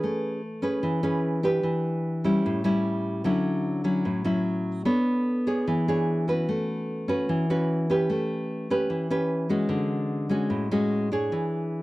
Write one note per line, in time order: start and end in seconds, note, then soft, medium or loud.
0.00 0.82 A3 medium
0.00 0.40 C#4 soft
0.00 0.40 G#4 soft
0.00 0.40 B4 medium
0.62 1.00 C#4 medium
0.62 1.00 G#4 medium
0.62 1.00 B4 medium
0.83 1.62 E3 medium
1.03 1.40 C#4 medium
1.03 1.40 G#4 medium
1.03 1.41 B4 medium
1.43 2.21 D4 medium
1.43 2.21 G4 medium
1.43 2.22 B4 medium
1.63 2.42 E3 medium
2.24 2.61 G3 soft
2.24 2.62 C#4 medium
2.24 2.62 E4 medium
2.46 3.24 A2 medium
2.64 3.22 G3 medium
2.64 3.22 C#4 medium
2.64 3.22 E4 medium
3.24 4.03 D3 medium
3.24 3.82 F#3 medium
3.24 3.83 C#4 medium
3.24 3.83 E4 medium
3.84 4.22 F#3 soft
3.84 4.22 C#4 soft
3.84 4.22 E4 medium
4.05 4.84 A2 medium
4.24 4.82 F#3 medium
4.24 4.83 C#4 medium
4.24 4.83 E4 medium
4.85 5.64 B3 medium
4.85 5.43 D4 medium
4.85 5.43 A4 soft
4.85 5.43 C#5 medium
5.47 5.84 D4 medium
5.47 5.84 G#4 medium
5.47 5.84 C#5 medium
5.67 6.46 E3 medium
5.88 6.25 D4 medium
5.88 6.25 G#4 medium
5.88 6.25 C#5 medium
6.28 7.05 C#4 medium
6.28 7.05 F#4 medium
6.28 7.05 B4 medium
6.49 7.27 A3 medium
7.08 7.45 C#4 medium
7.08 7.46 F#4 medium
7.08 7.46 B4 medium
7.29 8.07 E3 medium
7.50 7.86 C#4 medium
7.50 7.86 F#4 medium
7.50 7.87 B4 medium
7.90 8.66 C#4 medium
7.90 8.67 G4 medium
7.90 8.67 B4 medium
8.10 8.88 A3 medium
8.70 9.07 C#4 soft
8.70 9.07 G4 medium
8.70 9.07 B4 medium
8.90 9.68 E3 medium
9.10 9.47 C#4 medium
9.10 9.47 G4 medium
9.10 9.47 B4 medium
9.49 10.27 G#3 medium
9.49 10.27 C#4 medium
9.49 10.27 F#4 medium
9.69 10.48 D3 medium
10.29 10.67 G#3 medium
10.29 10.67 C#4 medium
10.29 10.68 F#4 medium
10.50 11.29 A2 medium
10.71 11.08 G#3 medium
10.71 11.08 C#4 medium
10.71 11.09 F#4 medium
11.12 11.82 D4 medium
11.12 11.82 G#4 medium
11.12 11.82 C#5 medium
11.32 11.82 E3 medium